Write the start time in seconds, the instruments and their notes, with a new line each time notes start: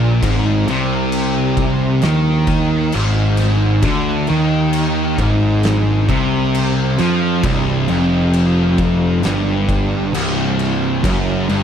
Already playing: picked electric bass A#1, distorted electric guitar A#2
0.22 picked electric bass G#1, distorted electric guitar G#2, kick, crash
0.66 picked electric bass C2, distorted electric guitar C3, crash
1.12 crash
1.57 kick, crash
2.02 picked electric bass D#2, distorted electric guitar D#3, snare, crash
2.47 kick, crash
2.92 picked electric bass G#1, distorted electric guitar G#2, crash
3.37 snare, crash
3.82 picked electric bass D2, distorted electric guitar D3, kick, crash
4.27 picked electric bass D#2, distorted electric guitar D#3, crash
4.73 crash
5.18 picked electric bass G#1, distorted electric guitar G#2, kick, crash
5.63 snare, crash
6.09 picked electric bass C2, distorted electric guitar C3, kick, crash
6.55 crash
6.98 picked electric bass F2, distorted electric guitar F3, snare, crash
7.43 picked electric bass C1, distorted electric guitar C2, kick, crash
7.88 picked electric bass F1, distorted electric guitar F2, crash
8.33 crash
8.78 kick, crash
9.23 picked electric bass G1, distorted electric guitar G2, snare, crash
9.69 kick, crash
10.14 picked electric bass C1, distorted electric guitar C2, crash
10.59 crash
11.04 picked electric bass F#1, distorted electric guitar F#2, kick, crash
11.49 picked electric bass G1, distorted electric guitar G2, crash